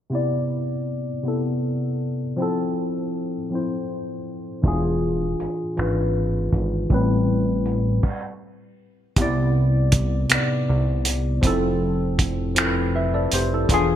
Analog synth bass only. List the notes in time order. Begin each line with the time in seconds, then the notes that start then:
4.65 E1
5.41 G#1
5.78 G#1
6.54 G#1
6.91 A1
9.18 C2
10.32 C2
10.69 C2
11.44 F1
13.33 F1
13.70 E1